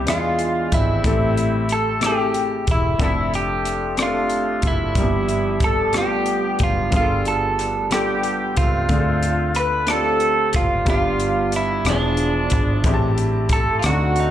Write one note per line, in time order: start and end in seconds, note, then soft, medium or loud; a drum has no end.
0.06 0.68 E2 medium
0.06 1.01 E3 soft
0.06 1.02 G#3 medium
0.06 0.66 B3 medium
0.06 0.67 D4 soft
0.06 1.02 D4 medium
0.06 0.68 F4 soft
0.06 0.75 F4 medium
0.06 0.68 G#4 medium
0.06 0.67 E5 soft
0.06 cross-stick medium
0.06 closed hi-hat medium
0.12 0.74 F4 medium
0.39 closed hi-hat soft
0.72 1.02 G#1 medium
0.72 1.67 G3 medium
0.72 1.67 C4 medium
0.72 1.73 E4 medium
0.72 1.71 E4 medium
0.72 kick medium
0.72 closed hi-hat medium
1.04 2.64 A1 medium
1.04 1.99 A2 soft
1.04 1.64 A3 medium
1.04 1.64 C4 medium
1.04 1.65 E4 medium
1.04 1.65 G4 medium
1.04 1.66 A4 medium
1.04 kick medium
1.04 closed hi-hat medium
1.37 closed hi-hat soft
1.69 2.04 A4 medium
1.69 closed hi-hat soft
1.73 2.04 A4 medium
2.01 2.62 A3 medium
2.01 2.62 C4 soft
2.01 2.63 E4 soft
2.01 2.63 G4 soft
2.01 2.10 G#4 soft
2.01 cross-stick medium
2.01 closed hi-hat medium
2.06 2.42 G4 medium
2.06 2.71 G4 medium
2.11 2.67 A4 medium
2.34 closed hi-hat soft
2.67 2.98 E1 medium
2.67 kick medium
2.67 closed hi-hat medium
2.71 3.03 E4 medium
2.71 3.00 E4 medium
2.99 4.59 F1 medium
2.99 3.61 F3 medium
2.99 3.60 A3 medium
2.99 3.95 A3 medium
2.99 3.60 C4 medium
2.99 3.33 C4 medium
2.99 3.61 D4 medium
2.99 3.32 E4 medium
2.99 3.61 A4 medium
2.99 kick medium
2.99 closed hi-hat medium
3.04 3.35 E4 medium
3.34 4.28 C4 medium
3.34 4.00 D4 medium
3.34 3.95 G4 medium
3.34 closed hi-hat soft
3.65 cross-stick soft
3.65 closed hi-hat medium
3.97 4.58 A3 medium
3.97 4.93 A3 medium
3.97 4.59 C4 medium
3.97 4.59 D4 soft
3.97 4.94 D4 medium
3.97 4.59 F4 medium
3.97 4.06 G4 soft
3.97 cross-stick medium
3.97 closed hi-hat medium
4.02 4.66 F4 medium
4.02 4.68 F4 medium
4.07 4.63 A4 medium
4.29 closed hi-hat soft
4.62 4.93 F#1 medium
4.62 5.59 B3 medium
4.62 kick medium
4.62 closed hi-hat medium
4.67 5.64 E4 medium
4.67 5.67 E4 medium
4.95 6.56 G1 medium
4.95 5.91 G2 soft
4.95 5.58 F3 medium
4.95 5.57 G3 medium
4.95 5.03 A#3 soft
4.95 5.57 D4 medium
4.95 5.58 G4 medium
4.95 kick medium
4.95 closed hi-hat medium
5.03 5.60 B3 medium
5.29 closed hi-hat soft
5.60 kick medium
5.60 cross-stick soft
5.60 closed hi-hat medium
5.64 5.97 A4 medium
5.64 5.94 A4 medium
5.93 6.54 G3 medium
5.93 6.01 A3 soft
5.93 6.55 D4 soft
5.93 6.56 F4 soft
5.93 6.56 G4 medium
5.93 cross-stick medium
5.93 closed hi-hat medium
5.97 6.90 B3 medium
5.97 6.58 B3 soft
5.97 6.90 D4 medium
5.97 6.62 G4 medium
5.97 6.63 G4 medium
6.26 closed hi-hat soft
6.59 6.91 F#1 medium
6.59 kick medium
6.59 closed hi-hat medium
6.63 6.94 F4 medium
6.63 6.95 F4 medium
6.91 8.53 G1 medium
6.91 7.87 G2 soft
6.91 7.52 G3 medium
6.91 7.53 B3 medium
6.91 7.53 D4 medium
6.91 7.54 F4 medium
6.91 7.00 G#4 medium
6.91 kick medium
6.91 closed hi-hat medium
6.95 7.89 B3 medium
6.95 7.89 D4 medium
6.95 7.25 F4 medium
6.95 7.27 F4 medium
7.00 7.57 A4 medium
7.25 7.92 A4 medium
7.25 7.66 A4 medium
7.25 closed hi-hat soft
7.59 cross-stick soft
7.59 closed hi-hat medium
7.91 8.52 G3 medium
7.91 8.52 B3 soft
7.91 8.88 B3 medium
7.91 8.53 D4 medium
7.91 8.87 D4 medium
7.91 8.53 F4 soft
7.91 8.57 G4 medium
7.91 8.53 A4 medium
7.91 cross-stick medium
7.91 closed hi-hat medium
7.95 8.55 G4 medium
8.23 closed hi-hat soft
8.57 8.88 C#2 medium
8.57 9.53 A3 medium
8.57 9.53 C4 medium
8.57 9.52 F4 medium
8.57 kick medium
8.57 closed hi-hat medium
8.61 9.58 F4 medium
8.89 10.50 D2 medium
8.89 9.85 D3 medium
8.89 9.50 A3 medium
8.89 9.51 C4 medium
8.89 9.51 D4 medium
8.89 9.51 F4 medium
8.89 8.98 G#4 medium
8.89 kick medium
8.89 closed hi-hat medium
8.99 9.55 A4 medium
9.23 closed hi-hat soft
9.55 9.90 B4 medium
9.55 cross-stick soft
9.55 closed hi-hat soft
9.87 10.48 A3 medium
9.87 10.49 C4 soft
9.87 10.49 D4 soft
9.87 10.50 F4 medium
9.87 9.96 G4 soft
9.87 10.56 A4 medium
9.87 cross-stick medium
9.87 closed hi-hat medium
9.92 10.85 C4 medium
9.92 10.57 F4 medium
9.92 10.56 A4 medium
9.96 10.53 A4 medium
10.20 closed hi-hat soft
10.53 10.85 F#1 medium
10.53 10.86 F4 medium
10.53 kick medium
10.53 closed hi-hat medium
10.58 10.89 F4 medium
10.85 11.82 G1 medium
10.85 11.82 G2 medium
10.85 11.47 G3 medium
10.85 11.47 B3 medium
10.85 11.48 D4 medium
10.85 11.48 F4 medium
10.85 11.49 G4 medium
10.85 kick medium
10.85 closed hi-hat medium
10.90 11.83 B3 medium
10.90 11.83 D4 medium
10.90 11.56 F4 medium
10.90 11.51 F4 medium
11.20 closed hi-hat soft
11.52 cross-stick soft
11.52 closed hi-hat medium
11.56 11.89 E4 medium
11.56 11.88 E4 medium
11.85 12.47 E1 medium
11.85 12.81 F3 medium
11.85 12.47 B3 medium
11.85 12.47 D4 soft
11.85 12.48 E4 soft
11.85 12.48 F4 soft
11.85 12.48 G#4 medium
11.85 cross-stick medium
11.85 closed hi-hat medium
11.89 13.21 F3 medium
11.89 13.21 G#3 medium
11.89 13.57 D4 medium
11.89 13.25 D4 medium
12.17 closed hi-hat soft
12.50 12.82 G#1 medium
12.50 kick medium
12.50 closed hi-hat medium
12.84 13.79 A1 medium
12.84 13.80 A2 medium
12.84 13.46 C4 medium
12.84 13.47 E4 medium
12.84 13.47 G4 medium
12.84 12.93 G#4 medium
12.84 kick medium
12.84 closed hi-hat medium
12.94 13.50 A5 medium
13.18 closed hi-hat soft
13.49 13.78 A4 medium
13.49 13.82 A4 medium
13.49 kick medium
13.49 cross-stick soft
13.49 closed hi-hat medium
13.79 13.85 F4 medium
13.79 closed hi-hat medium
13.84 14.31 D2 medium
13.84 14.31 D3 soft
13.84 14.31 A3 medium
13.84 14.31 C4 medium
13.84 14.31 D4 soft
13.84 14.31 D#4 soft
13.84 14.19 F#4 medium
13.84 14.31 F#4 soft
13.84 14.31 F#4 medium
13.84 14.31 A4 medium
13.84 cross-stick medium
14.16 14.31 D#4 medium
14.16 closed hi-hat soft